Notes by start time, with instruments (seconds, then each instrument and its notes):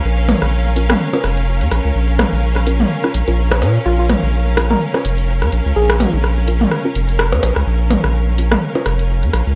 Already playing: string section C#4 A#4 F5
0.05 sub bass A#1, shaker
0.18 shaker
0.29 closed hi-hat, mid tom, percussion blips, shaker
0.42 sub bass A#1, cross-stick, shaker
0.52 shaker
0.67 shaker
0.76 synth stab C#4 F4 A#4, closed hi-hat, shaker
0.90 cross-stick, mid tom, shaker
1.00 shaker
1.13 synth stab C#4 F4 A#4, percussion blips, shaker
1.24 sub bass F1, cross-stick, closed hi-hat, shaker
1.37 closed hi-hat, shaker
1.48 shaker
1.61 sub bass F2, closed hi-hat, shaker
1.71 sub bass A#1, cross-stick, closed hi-hat, shaker
1.85 sub bass C#2, shaker
1.95 sub bass A#1, shaker
2.08 shaker
2.19 cross-stick, closed hi-hat, mid tom, percussion blips, shaker
2.32 sub bass A#1, shaker
2.43 shaker
2.56 cross-stick, shaker
2.67 synth stab C#4 F4 A#4, closed hi-hat, shaker
2.80 mid tom, shaker
2.91 shaker
3.03 synth stab C#4 F4 A#4, cross-stick, shaker
3.14 sub bass A#1, closed hi-hat, shaker
3.28 sub bass A#1, synth stab C#4 F4 A#4, closed hi-hat, shaker
3.39 shaker
3.51 cross-stick, closed hi-hat, percussion blips, shaker
3.62 sub bass A#2, closed hi-hat, percussion blips, shaker
3.75 shaker
3.85 sub bass A#1, soft synth lead F4, shaker
3.99 soft synth lead F4, shaker
4.09 cross-stick, closed hi-hat, mid tom, percussion blips, shaker
4.23 sub bass A#1, shaker
4.33 shaker
4.47 shaker
4.57 synth stab C#4 F4 A#4, cross-stick, closed hi-hat, shaker
4.70 soft synth lead A#4, mid tom, shaker
4.81 shaker
4.94 synth stab C#4 F4 A#4, cross-stick, percussion blips, shaker
5.05 sub bass F1, closed hi-hat, shaker
5.18 closed hi-hat, shaker
5.29 shaker
5.42 sub bass F2, cross-stick, closed hi-hat, shaker
5.52 sub bass A#1, closed hi-hat, shaker
5.66 sub bass C#2, shaker
5.76 sub bass A#1, soft synth lead G#4, shaker
5.89 cross-stick, shaker
6.00 closed hi-hat, mid tom, percussion blips, shaker
6.13 sub bass A#1, shaker
6.24 cross-stick, shaker
6.37 shaker
6.47 synth stab C#4 F4 A#4, closed hi-hat, shaker
6.61 mid tom, shaker
6.71 cross-stick, shaker
6.85 synth stab C#4 F4 A#4, shaker
6.95 sub bass F1, closed hi-hat, shaker
7.09 closed hi-hat, shaker
7.19 cross-stick, shaker
7.32 sub bass F2, closed hi-hat, percussion blips, shaker
7.42 sub bass A#1, closed hi-hat, percussion blips, shaker
7.56 sub bass C#2, cross-stick, shaker
7.67 sub bass A#1, shaker
7.80 shaker
7.90 closed hi-hat, mid tom, percussion blips, shaker
8.03 sub bass A#1, cross-stick, shaker
8.15 shaker
8.27 shaker
8.38 synth stab C#4 F4 A#4, closed hi-hat, shaker
8.52 cross-stick, mid tom, shaker
8.62 shaker
8.75 synth stab C#4 F4 A#4, percussion blips, shaker
8.86 sub bass F1, cross-stick, closed hi-hat, shaker
8.99 closed hi-hat, shaker
9.10 shaker
9.23 sub bass F2, closed hi-hat, shaker
9.33 sub bass A#1, cross-stick, closed hi-hat, shaker
9.47 sub bass C#2, shaker